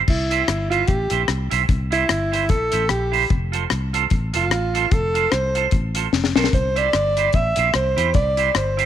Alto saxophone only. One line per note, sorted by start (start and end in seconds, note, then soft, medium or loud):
0.10 0.68 E4 medium
0.70 0.89 F4 loud
0.88 1.28 G4 medium
1.93 2.51 E4 loud
2.50 2.91 A4 loud
2.89 3.30 G4 medium
4.36 4.94 F4 medium
4.93 5.33 A4 medium
5.31 5.72 C5 medium
6.38 6.53 A#4 medium
6.54 6.79 C5 loud
6.78 7.36 D5 loud
7.35 7.75 E5 loud
7.75 8.12 C5 loud
8.15 8.58 D5 loud
8.57 8.86 C5 medium